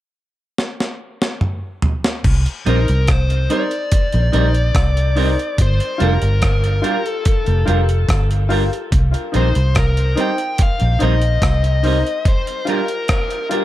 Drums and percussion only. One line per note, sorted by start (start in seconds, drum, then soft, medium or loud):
0.58 snare medium
0.80 snare medium
1.22 snare medium
1.41 mid tom medium
1.82 floor tom medium
2.04 snare medium
2.24 kick loud
2.24 crash medium
2.46 closed hi-hat medium
2.67 closed hi-hat medium
2.88 closed hi-hat medium
3.08 kick medium
3.08 cross-stick loud
3.08 closed hi-hat medium
3.30 closed hi-hat medium
3.50 closed hi-hat medium
3.71 closed hi-hat soft
3.92 kick loud
3.92 closed hi-hat loud
4.12 closed hi-hat soft
4.33 closed hi-hat medium
4.55 closed hi-hat medium
4.75 kick loud
4.75 cross-stick loud
4.75 closed hi-hat medium
4.97 closed hi-hat medium
5.17 open hi-hat medium
5.39 closed hi-hat soft
5.58 kick loud
5.58 closed hi-hat loud
5.80 closed hi-hat medium
6.00 closed hi-hat medium
6.22 closed hi-hat medium
6.42 kick loud
6.42 cross-stick loud
6.42 closed hi-hat medium
6.64 closed hi-hat soft
6.84 closed hi-hat medium
7.06 closed hi-hat soft
7.25 kick loud
7.25 closed hi-hat loud
7.46 closed hi-hat soft
7.68 closed hi-hat medium
7.89 closed hi-hat medium
8.09 kick loud
8.09 cross-stick loud
8.09 closed hi-hat medium
8.31 closed hi-hat medium
8.50 open hi-hat medium
8.73 closed hi-hat soft
8.92 kick loud
8.92 closed hi-hat loud
9.14 closed hi-hat medium
9.34 closed hi-hat medium
9.55 closed hi-hat medium
9.75 kick loud
9.75 cross-stick loud
9.75 closed hi-hat medium
9.97 closed hi-hat medium
10.17 closed hi-hat medium
10.38 closed hi-hat soft
10.58 kick loud
10.58 closed hi-hat loud
10.80 closed hi-hat soft
11.00 closed hi-hat medium
11.22 closed hi-hat soft
11.42 kick loud
11.42 cross-stick loud
11.42 closed hi-hat medium
11.64 closed hi-hat medium
11.84 open hi-hat medium
12.07 closed hi-hat soft
12.25 kick loud
12.25 closed hi-hat loud
12.47 closed hi-hat medium
12.67 closed hi-hat medium
12.88 closed hi-hat medium
13.08 kick medium
13.08 cross-stick loud
13.08 closed hi-hat medium
13.30 closed hi-hat medium
13.51 closed hi-hat medium